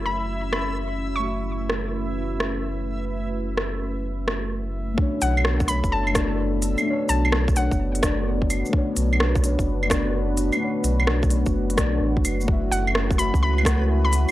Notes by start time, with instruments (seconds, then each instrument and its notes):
Already playing: sub bass F#1, synth keys A3 F#4 E5, analog synth pad A3 C#4 E4 F#4 C#5, synth texture E4 E5
0.05 synth pluck B5
0.52 synth pluck B5, cross-stick
1.16 synth keys A3, synth pluck C#6
1.23 synth keys F#4 E5, analog synth pad B4
1.70 cross-stick
2.40 cross-stick
3.57 cross-stick
4.28 cross-stick
4.94 synth keys A3 D4, kick
4.98 analog synth pad B3 D4 F#4 A4, synth keys C#5
5.22 sub bass B1, synth pluck F#5, open hi-hat, shaker
5.37 claves
5.45 cross-stick
5.60 kick, shaker
5.66 synth keys A3 D4, synth pluck B5, open hi-hat, shaker
5.70 synth keys C#5
5.84 sub bass F#1, kick, shaker
5.92 synth pluck A5
6.07 claves
6.13 synth keys A3 D4, kick, cross-stick, open hi-hat, shaker
6.17 synth keys D5
6.27 synth keys A3 D4
6.35 synth keys D5
6.62 open hi-hat, shaker
6.78 claves, shaker
6.82 synth keys A3 D4
6.90 synth keys C#5
7.09 sub bass B1, synth pluck A5, open hi-hat, shaker
7.25 claves
7.32 cross-stick
7.48 kick, shaker
7.54 synth keys A3 D4 C#5, synth pluck F#5, open hi-hat, shaker
7.71 sub bass F#1, kick, shaker
7.95 open hi-hat
8.01 synth keys A3 D4, kick, cross-stick, open hi-hat, shaker
8.05 synth keys D5
8.15 synth keys A3 D4
8.23 synth keys D5
8.42 kick
8.50 open hi-hat, claves, shaker
8.66 synth keys A3, shaker
8.73 synth keys D4, analog synth pad B4, kick
8.77 synth keys C#5
8.97 sub bass B1, open hi-hat, shaker
9.13 claves
9.20 cross-stick
9.35 kick, shaker
9.42 synth keys A3 D4, open hi-hat, shaker
9.46 synth keys C#5
9.59 sub bass F#1, kick, shaker
9.83 claves
9.88 synth keys A3 D4, kick, cross-stick, open hi-hat, shaker
9.92 synth keys D5
10.01 synth keys A3
10.06 synth keys D4 D5
10.37 open hi-hat, shaker
10.53 synth keys A3, claves, shaker
10.60 synth keys D4 C#5
10.84 sub bass B1, open hi-hat, shaker
11.00 claves
11.07 cross-stick
11.23 kick, shaker
11.29 synth keys A3 D4 C#5, open hi-hat, shaker
11.46 sub bass F#1, kick, shaker
11.70 open hi-hat
11.76 sub bass B1, synth keys A3 D4 D5, kick, cross-stick, open hi-hat, shaker
11.89 synth keys A3
11.93 synth keys D4 D5
12.01 sub bass A1
12.17 kick
12.25 sub bass F#1, open hi-hat, claves, shaker
12.41 synth keys A3, shaker
12.48 analog synth pad A3 C#4 E4, synth texture B3 B4, synth keys F#4, kick
12.52 synth keys E5
12.72 sub bass F#1, synth pluck F#5, open hi-hat, shaker
12.87 claves
12.95 cross-stick
13.11 kick, shaker
13.16 synth keys A3 F#4, synth pluck B5, open hi-hat, shaker
13.21 synth keys E5
13.34 sub bass C#2, kick, shaker
13.43 synth pluck B5
13.58 claves
13.63 synth keys A3 F#4, kick, cross-stick, open hi-hat, shaker
13.68 synth keys F#5
13.77 synth keys A3
13.81 synth keys F#4 F#5
14.05 synth pluck B5
14.13 open hi-hat, shaker